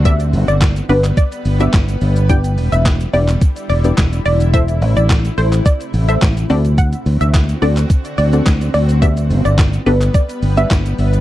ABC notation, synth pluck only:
X:1
M:4/4
L:1/16
Q:1/4=107
K:G
V:1 name="Synth pluck"
e2 z d2 z B z d z2 e2 z3 | g2 z e2 z d z3 d z3 d z | e2 z d2 z c z d z2 e2 z3 | f2 z e2 z d z3 d z3 d z |
e2 z d2 z B z d z2 e2 z3 |]